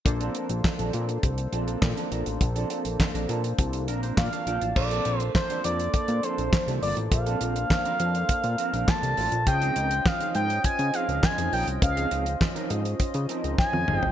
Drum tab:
CC |----------------|----------------|x---------------|----------------|
HH |xxxx-xxxxxxx-xxx|xxxx-xxxxxxx-xxx|-xxx-xxxxxxx-xox|xxxx-xxxxxxx-xox|
CP |----x-------x---|----x-------x---|----x-------x---|----x-------x---|
SD |----o-------o---|----o-------o---|----o-------o---|----o-------o---|
T1 |----------------|----------------|----------------|----------------|
T2 |----------------|----------------|----------------|----------------|
FT |----------------|----------------|----------------|----------------|
BD |o---o---o---o---|o---o---o---o---|o---o---o---o---|o---o---o---o---|

CC |----------------|----------------|
HH |xxxx-xxxxxxx-xox|xxxx-xxxxxxx----|
CP |----x-------x---|----x-----------|
SD |----o-------o---|----o-------o---|
T1 |----------------|-------------o--|
T2 |----------------|--------------o-|
FT |----------------|---------------o|
BD |o---o---o---o---|o---o---o---o---|